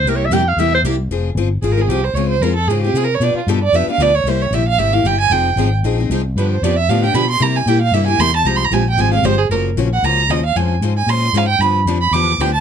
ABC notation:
X:1
M:4/4
L:1/8
Q:"Swing" 1/4=229
K:Fm
V:1 name="Violin"
z8 | z4 (3A B A G c | d c B =A _A G (3A B d | =d F =A d =e f d _d |
c d =e f e f g a | g3 z4 z | =B c =d =e f g =b c' | b a g f =e a c' =a |
(3b c' b a g a f c A | B z2 _g b2 e f | a z2 a c'2 f g | =b z2 b =d'2 g =a |]
V:2 name="Clarinet"
(3B d =e g f e c z2 | z8 | z8 | z8 |
z8 | z8 | z8 | z8 |
z8 | z8 | z8 | z8 |]
V:3 name="Steel-string acoustic guitar"
[C,G,B,=EG] z [C,G,B,EG] z [C,G,B,EG] z [C,G,B,EG] z | [F,CFA] z [F,CFA] z [F,CFA] [CFA] [F,CFA] z | [D,A,CFA] z [D,A,CFA] z [D,A,CFA] [CFA] [D,A,CFA] z | [=B,,F,=B,=DG=B] z [B,,F,B,DGB] z [B,,F,B,DGB] [B,DGB] [B,,F,B,DGB] z |
[C,G,B,=EG] z [C,G,B,EG] z [C,G,B,EG] [B,EG] [C,G,B,EG] z | [F,CEA] z [F,CEA] z [F,CEA] [CEA] [F,CEA] z | [=D,F,=B,=DG] z [D,F,B,DG] z [D,F,B,DG] [B,DG] [D,F,B,DG] z | [C,G,B,=EG] z [C,G,B,EG] z [C,G,B,EG] [B,EG] [C,G,B,EG] z |
[F,A,CG] z [F,A,CG] z [F,A,CG] [A,CG] [F,A,CG] z | [D,F,B,D_G] z [D,F,B,DG] z [D,F,B,DG] z [D,F,B,DG] z | [F,A,DFc] z [F,A,DFc] z [F,A,DFc] z [F,A,DFc] z | [=D,F,=B,=DG] z [D,F,B,DG] z [D,F,B,DG] z [D,F,B,DG] z |]
V:4 name="Steel-string acoustic guitar"
[C,G,B,=EG] z [C,G,B,EG] z [C,G,B,EG] z [C,G,B,EG] z | z8 | z8 | z8 |
z8 | [F,CEA] z [F,CEA] z [F,CEA] z [F,CEA] z | [=D,F,=B,=DG] z [D,F,B,DG] z [D,F,B,DG] z [D,F,B,DG] z | [C,G,B,=EG] z [C,G,B,EG] z [C,G,B,EG] z [C,G,B,EG] z |
[F,A,CG] z [F,A,CG] z [F,A,CG] z [F,A,CG] z | z8 | z8 | z8 |]
V:5 name="Fretless electric bass" clef=bass
C,,2 F,,2 =E,,2 C,,2 | F,,,2 G,,,2 A,,,2 C,,2 | D,,2 F,,2 A,,2 C,2 | =B,, z G,,2 F,, z =D,,2 |
C,,2 B,,,2 A,,,2 G,,,2 | F,,,2 A,,,2 B,,,2 C,,2 | G,,2 F,,2 =A,,2 =B,,2 | C,2 B,,2 G,,2 =E,,2 |
C,,2 B,,,2 A,,,2 G,,,2 | _G,,,2 B,,,2 D,,2 E,,2 | F,,2 A,,2 B,,2 A,,2 | G,,2 F,,2 =E,,2 =D,,2 |]